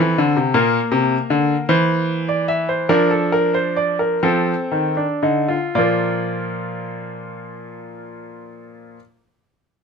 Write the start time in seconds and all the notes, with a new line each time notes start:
Already playing: C4 A4
0.00 E3
0.18 D3
0.36 C3
0.54 A#2 A#3 A#4
0.92 C3
1.30 D3
1.69 E3 C5
2.29 D5
2.48 E5
2.69 C5
2.89 F3 D4 A#4
3.11 A4
3.32 A#4
3.54 C5
3.76 D5
3.99 A#4
4.23 F3 C4 A4
4.72 D#3
4.97 D4
5.23 D3 D#4
5.48 F4
5.75 A#2 F3 A#3 F4 D5